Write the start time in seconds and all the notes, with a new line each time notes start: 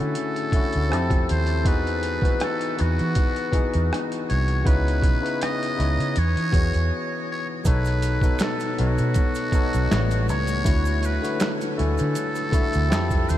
Already playing: D3 A3 C#4 E4 F#4 G#4 A4
0.00 D3
0.15 closed hi-hat
0.36 closed hi-hat
0.52 D3 A3 C#4 E4 F#4, muted fingered electric bass stroke, kick, closed hi-hat
0.73 D2, closed hi-hat
0.90 F2 F3 C4 E4 G4 A4, cross-stick, closed hi-hat
1.10 kick, closed hi-hat
1.29 D#2 C5, closed hi-hat
1.47 closed hi-hat
1.64 E2 E3 B3 D#4 F#4 G#4 B4, kick, closed hi-hat
1.87 closed hi-hat
2.03 closed hi-hat
2.21 E3 B3 D#4 F#4 B4, kick, closed hi-hat
2.40 A4, cross-stick, closed hi-hat
2.61 closed hi-hat
2.77 E2 E3 B3 D#4 F#4 B4, closed hi-hat
2.99 E3, closed hi-hat
3.15 kick, closed hi-hat
3.36 closed hi-hat
3.51 E3 B3 D#4 F#4 G#4, muted fingered electric bass stroke, kick, closed hi-hat
3.74 E2, closed hi-hat
3.93 cross-stick, closed hi-hat
4.12 closed hi-hat
4.30 C2 C#5, closed hi-hat
4.48 closed hi-hat
4.64 C#2 C#3 B3 D#4 E4 B4 C#5, kick, closed hi-hat
4.88 closed hi-hat
5.02 kick, closed hi-hat
5.21 C#3 B3 D#4 E4 B4
5.26 closed hi-hat
5.42 D#5, cross-stick, closed hi-hat
5.63 closed hi-hat
5.76 C#2 C#3 B3 D#4 E4 C#5, cross-stick, closed hi-hat
5.99 C#3, closed hi-hat
6.16 E2 C#5, closed hi-hat
6.37 E3, closed hi-hat
6.51 E2 E3 B3 F#4 G#4 C#5, kick, closed hi-hat
6.74 E2, closed hi-hat
7.32 C#5
7.64 B1 B2 B3 D#4 A4 C#5, kick, closed hi-hat, maracas
7.68 B4
7.85 closed hi-hat, maracas
8.02 closed hi-hat, maracas
8.21 B2 B3 D#4 A4 C#5, kick, closed hi-hat, maracas
8.39 finger snap, snare, closed hi-hat, maracas
8.42 A4, finger snap
8.60 closed hi-hat, maracas
8.77 B1 B2 B3 D#4 F#4 A4 C#5, closed hi-hat
8.98 B2, closed hi-hat, maracas
9.14 kick, closed hi-hat, maracas
9.35 closed hi-hat, maracas
9.52 B2 B3 D#4 A4 C#5, muted fingered electric bass stroke, kick, closed hi-hat, maracas
9.73 B1, closed hi-hat, maracas
9.89 A1 A2 G3 A3 B3 C#5, finger snap, snare, closed hi-hat, maracas
10.11 closed hi-hat, maracas
10.29 C#2 C#5, closed hi-hat, maracas
10.47 closed hi-hat, maracas
10.64 D2 D3 A3 E4 F#4 C#5, kick, closed hi-hat, maracas
10.85 closed hi-hat, maracas
11.03 B4, closed hi-hat, maracas
11.22 D3 A3 E4 F#4 B4, closed hi-hat, maracas
11.40 finger snap, snare, closed hi-hat, maracas
11.42 finger snap
11.61 closed hi-hat, maracas
11.77 D2 D3 A3 E4 F#4 A4 G#5, closed hi-hat
11.98 D3, closed hi-hat, maracas
12.15 closed hi-hat, maracas
12.35 closed hi-hat, maracas
12.51 D3 A3 E4 F#4 E5, muted fingered electric bass stroke, kick, closed hi-hat, maracas
12.73 D2, closed hi-hat, maracas
12.89 F3 C4 E4 G4 A4, finger snap, snare, maracas
12.93 F2, finger snap, closed hi-hat
13.11 kick, closed hi-hat, maracas
13.29 D#2 C5, closed hi-hat, maracas